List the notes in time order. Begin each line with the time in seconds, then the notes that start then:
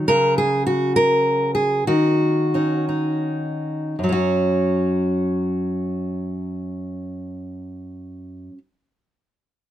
Already playing: F#3
0.08 C#3 A#4
0.38 G#4
0.67 F#4
0.96 A#4
1.55 G#4
1.87 D#3 F#4
2.54 C#4 D#4
2.89 D#4
3.99 F#2
4.04 F#3
4.09 C#4 F#4